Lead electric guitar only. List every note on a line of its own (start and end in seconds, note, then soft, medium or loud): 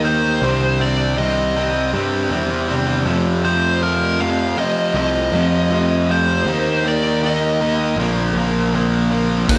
0.05 0.83 C5 loud
0.81 1.18 D5 medium
1.18 1.90 D#5 medium
3.45 3.82 C5 medium
3.83 4.22 A#4 medium
4.21 4.58 F5 medium
4.59 4.95 D#5 loud
4.97 6.13 D#5 loud
6.11 6.88 C5 medium
6.88 7.25 D5 medium
7.26 7.96 D#5 medium
9.50 9.58 C5 medium